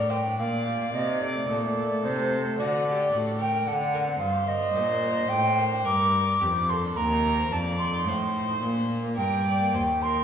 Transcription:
Already playing: A2 D4 D5
0.09 A#4 C5 G5
0.25 D4
0.39 A#2 D5 F5
0.52 D4
0.66 G4
0.80 A#3
0.93 C3 D#5
1.09 D#4
1.21 A4 D5
1.35 A3
1.49 A#2 D#4 A4
1.62 A3
1.76 A4
1.90 A3
2.04 C3 D#4 C5
2.17 A3
2.31 A4
2.44 A3
2.58 D3 F#4 D5
2.72 F#4
2.85 A4
2.89 G4
2.98 D4
3.12 A2 F#4 A4
3.25 D4
3.39 A4 A#4 G5
3.52 D4
3.66 D3 A4 F#5
3.80 D4
3.93 A4 A#4
4.07 C4
4.19 G2 C5 F5
4.33 G4
4.47 A#4 D#5
4.61 D4
4.74 A#2 G4
4.90 D4
5.03 A#4
5.16 D4
5.29 A2 G4 G5
5.44 D4
5.58 A#4
5.72 D4
5.85 G2 A#4 D6
6.01 G4
6.14 A#4
6.28 D4
6.41 F2 G4
6.56 D4
6.68 A4 A#4 C6
6.83 D4
6.96 D#2 A#4 A#5
7.10 D#4
7.25 G4
7.38 C4
7.52 F2 D5 A5
7.66 F4
7.79 A4 C6
7.92 D#4
8.06 A2 F4 C5
8.19 D#4
8.34 A4
8.48 D#4
8.61 A#2
8.75 D4
8.89 F4
9.03 A#3
9.16 G2 A#4 G5
9.30 D4
9.44 G4 D5
9.59 A#3
9.73 D#2 C5
9.87 G4
10.01 A#4 C5 C6
10.15 D#4

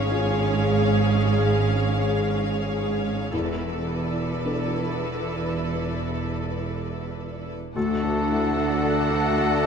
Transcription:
Already playing: G#1 G#2 C#4 G#4 C#5 F5
0.10 C#4 F4 G#4 F5
0.45 G#4
0.79 F4
1.15 G#3
1.50 C#4
1.85 G#4
2.21 F5
2.57 G#4
2.95 F4
3.31 E1 E2 E4 A4 B4 D5
3.69 B3
4.07 A4
4.45 B3 D4 A4 D5
4.82 A4
5.19 D4
5.56 B2
5.93 B3
6.30 A4
6.66 D5
7.02 A4
7.39 D4
7.75 D2 D3 A3 D4 F#4 A4 F#5 A5
8.02 A3 D4
8.30 D4 E4
8.56 D4 F#4
8.82 A4
9.09 D4 D5
9.36 A4 F#5
9.63 A5

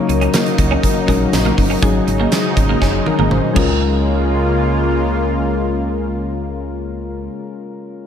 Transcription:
Already playing: C#3 F#3 A#3 C#4 D#4 A#4 C#5
0.09 C#2, muted clean electric guitar stroke, closed hi-hat
0.21 C#4, closed hi-hat
0.34 A#3, snare, closed hi-hat, tambourine
0.46 closed hi-hat
0.58 C#2, muted clean electric guitar stroke, kick, closed hi-hat
0.71 C#4
0.83 kick, closed hi-hat
1.07 A#1 F#3 G#3 C#4 D#4 A#4, kick, closed hi-hat
1.33 A#1, snare, closed hi-hat, tambourine
1.45 A#3
1.58 G1, muted clean electric guitar stroke, kick, open hi-hat
1.70 C#4
1.82 G#1 C#3 F#3 G#3 C#4 D#4 G#4, kick, closed hi-hat
2.07 G#1, muted clean electric guitar stroke, closed hi-hat
2.20 A#3
2.32 G#3, snare, closed hi-hat, tambourine
2.57 G#1, muted clean electric guitar stroke, kick, closed hi-hat
2.69 A#3
2.82 F#1 C#4, kick, snare
3.06 G#1 A#4, muted clean electric guitar stroke, high tom
3.19 G#1 A#3, high tom
3.31 G#1 C5, mid tom
3.53 C#2 C#3 G#3 A#3 C#4 F4, kick, crash
3.58 A#4

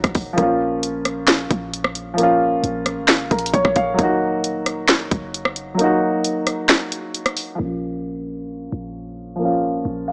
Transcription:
Already playing: F#3 A#3 D#4 F#4
0.04 D#1, kick, cross-stick, closed hi-hat
0.15 D#1, kick, open hi-hat
0.33 F3 A#3
0.38 A#1 C#4, kick, closed hi-hat
0.43 F4
0.83 closed hi-hat
1.05 cross-stick, closed hi-hat
1.28 snare, clap, closed hi-hat
1.51 A#1, kick, closed hi-hat
1.74 closed hi-hat
1.84 cross-stick
1.95 closed hi-hat
2.14 F3 A#3
2.18 C#4, closed hi-hat
2.23 F4
2.63 A#1, closed hi-hat
2.86 cross-stick, closed hi-hat
2.97 G#1
3.08 snare, clap, closed hi-hat
3.31 A#1 A#4, kick, closed hi-hat
3.39 closed hi-hat
3.46 closed hi-hat
3.54 A#1 C#5, kick, closed hi-hat
3.65 A#1, kick, cross-stick
3.76 A#1 F5, kick, closed hi-hat
3.94 F#3 A#3
3.99 D#1 D#4, kick, closed hi-hat
4.03 F#4
4.44 closed hi-hat
4.66 cross-stick, closed hi-hat
4.89 snare, clap, closed hi-hat
5.11 F#1, kick, closed hi-hat
5.34 closed hi-hat
5.45 cross-stick
5.56 closed hi-hat
5.74 F#3 A#3
5.79 D#4, closed hi-hat
5.84 F#4
6.24 closed hi-hat
6.47 cross-stick, closed hi-hat
6.69 snare, clap, closed hi-hat
6.92 closed hi-hat
7.14 closed hi-hat
7.26 cross-stick, closed hi-hat
7.37 open hi-hat
7.55 F3 A#3
7.60 A#1 C#4
7.64 F4
8.72 A#1
9.36 F3 A#3
9.42 C#4 F4
9.85 A#1
10.08 F5

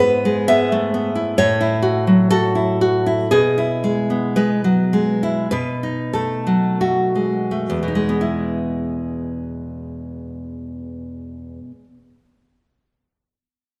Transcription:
Already playing: G#2 E4
0.00 B3 B4
0.25 G#3
0.48 B3 E5
0.72 A3
0.94 B3
1.15 E4
1.38 A2 C#5
1.61 E4
1.82 F#4
2.07 F#3
2.31 F#4 A4
2.55 E4
2.81 F#4
3.06 E4
3.31 B2 G#4
3.58 E4
3.84 G#3
4.10 B3
4.36 G#3 B4
4.64 F#3
4.93 G#3
5.23 E4
5.51 B2 B4
5.83 D#4
6.13 A3 A4
6.47 F#3
6.81 A3 F#4
7.15 G#3
7.51 A3
7.70 E2
7.83 B2
7.88 D#4
7.95 G#3
8.09 B3
8.21 E4

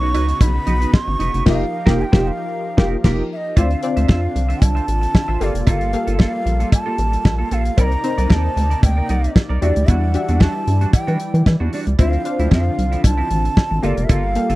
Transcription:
Already playing: B1 C#3 B3 D#4 F#4 C#5 C#6
0.02 D#4 F#4 C#5
0.14 C#2 D#4 F#4 B4, closed hi-hat, cowbell
0.28 muted clean electric guitar stroke, closed hi-hat
0.41 B1 B5, kick, closed hi-hat, cowbell
0.54 muted clean electric guitar stroke
0.67 B1 D#4 F#4 B4, closed hi-hat
0.81 D#4 F#4 B4, closed hi-hat
0.94 C#6, kick, snare, cowbell
1.07 G#1, muted clean electric guitar stroke
1.19 F1 D#4 F#4 B4, closed hi-hat
1.34 F#1 D#4 F#4 B4, closed hi-hat
1.46 F1 F3 A#3 D#4 F4 G4 A#4 D#5 F5, kick, snare, crash
1.86 F1 A#3 D#4 F4 G4 A#4, kick, snare
2.01 G5 G#5
2.12 F1 A#3 D#4 F4 G4 C5, kick, snare
2.28 F5
2.77 F1 A#3 D#4 F4 G4 A#4, kick, snare
3.04 F1 A#3 D#4 F4 G4 A#4, kick, snare, crash
3.33 D#5 E5
3.56 D2 D3 C4 D4 E4 F4 C5 D5 E5 F5, kick, closed hi-hat, cowbell
3.71 closed hi-hat
3.83 C4 D4 F4 D5, muted clean electric guitar stroke, closed hi-hat
3.96 D2 F4 C5 E5, closed hi-hat
4.08 F2 F4 C5 E5 F5, kick, snare, cowbell
4.23 muted clean electric guitar stroke
4.35 C2, muted clean electric guitar stroke, closed hi-hat
4.49 F4 C5 E5, closed hi-hat
4.61 C2 A5, muted clean electric guitar stroke, kick, closed hi-hat, cowbell
4.75 F4 C5 E5, closed hi-hat
4.87 A1, muted clean electric guitar stroke, closed hi-hat
5.01 muted clean electric guitar stroke, closed hi-hat
5.14 muted clean electric guitar stroke, kick, snare, cowbell
5.28 A1 F4 C5 E5
5.40 G1 G3 A#3 F4 G4 A4 D5 F5, closed hi-hat
5.54 F1, muted clean electric guitar stroke, closed hi-hat
5.67 G1 A#3 F4 A4 F5, kick, closed hi-hat, cowbell
5.81 closed hi-hat
5.93 A#3 G4 A4 F5, muted clean electric guitar stroke, closed hi-hat
6.07 G1 A#3 F4 A4, closed hi-hat
6.19 A#3 F4 A4 F5, kick, snare, cowbell
6.34 muted clean electric guitar stroke
6.46 A#1, muted clean electric guitar stroke, closed hi-hat
6.60 A#3 F4 A4, closed hi-hat
6.72 A5, kick, closed hi-hat, cowbell
6.86 A#3 F4 A4
6.98 A1, muted clean electric guitar stroke, closed hi-hat
7.12 muted clean electric guitar stroke, closed hi-hat
7.25 A#1, muted clean electric guitar stroke, kick, snare, cowbell
7.38 A#3 F4 A4
7.51 A#1 A#3 F4 A4 F5, closed hi-hat
7.65 muted clean electric guitar stroke, closed hi-hat
7.77 C2 C3 A#3 C4 D#4 A#4 D5 B5, kick, closed hi-hat, cowbell
7.83 A#5
7.92 closed hi-hat
8.04 C4 D#4 A#4 C5, muted clean electric guitar stroke, closed hi-hat
8.18 C2 D#4 A#4 D5, closed hi-hat
8.30 D#2 D#4 A#4 D5 A5, kick, snare, cowbell
8.44 muted clean electric guitar stroke
8.57 D2, muted clean electric guitar stroke, closed hi-hat
8.70 D#4 A#4 D5, closed hi-hat
8.83 D2 G5, muted clean electric guitar stroke, kick, closed hi-hat, cowbell
8.97 D#4 A#4 D5
9.09 C2 D#4 A#4 D5, closed hi-hat
9.23 muted clean electric guitar stroke, closed hi-hat
9.36 muted clean electric guitar stroke, kick, snare, cowbell
9.49 C2 D#4 A#4 D5
9.61 E2 E3 G3 D4 E4 F#4 G4 D5 E5, closed hi-hat
9.76 D2, muted clean electric guitar stroke, closed hi-hat
9.88 E2 G3 D4 F#4 F#5, kick, closed hi-hat, cowbell
10.14 D4 F#4 G4 E5, muted clean electric guitar stroke, closed hi-hat
10.28 E2 G3 D4 F#4, closed hi-hat
10.40 G3 D4 F#4 A5, kick, snare, cowbell
10.55 muted clean electric guitar stroke
10.67 G2, muted clean electric guitar stroke, closed hi-hat
10.81 G3 D4 F#4, closed hi-hat
10.93 G5, muted clean electric guitar stroke, kick, closed hi-hat, cowbell
11.07 E3 G3 D4 F#4, closed hi-hat
11.20 muted clean electric guitar stroke, closed hi-hat
11.34 E3, muted clean electric guitar stroke, closed hi-hat
11.46 E3, muted clean electric guitar stroke, kick, snare, cowbell
11.60 E2 G3 D4 F#4
11.73 G3 D4 F#4 D5, open hi-hat
11.87 C#2, muted clean electric guitar stroke, closed hi-hat
11.98 D2 D3 F3 C4 D4 E4 F4 C5 E5 F5, kick, closed hi-hat, cowbell
12.13 closed hi-hat
12.25 D4 F4 C5 F5, muted clean electric guitar stroke, closed hi-hat
12.39 D2 F3 C4 E4, closed hi-hat
12.51 F2 F3 C4 E4 F5, kick, snare, cowbell
12.65 muted clean electric guitar stroke
12.78 C2, muted clean electric guitar stroke, closed hi-hat
12.92 F3 C4 E4, closed hi-hat
13.04 C2 A5, kick, closed hi-hat, cowbell
13.18 F3 C4 E4
13.30 A1, muted clean electric guitar stroke, closed hi-hat
13.44 muted clean electric guitar stroke, closed hi-hat
13.57 muted clean electric guitar stroke, kick, snare, cowbell
13.71 A1, muted clean electric guitar stroke
13.82 G1 G3 A#3 F4 G4 A4 D5 F5, closed hi-hat
13.97 F1, muted clean electric guitar stroke, closed hi-hat
14.04 E5
14.09 G1 A#3 F4 A4 F5, kick, closed hi-hat, cowbell
14.35 A#3 G4 A4 F5, muted clean electric guitar stroke, closed hi-hat
14.50 G1 A#3 F4 A4, closed hi-hat

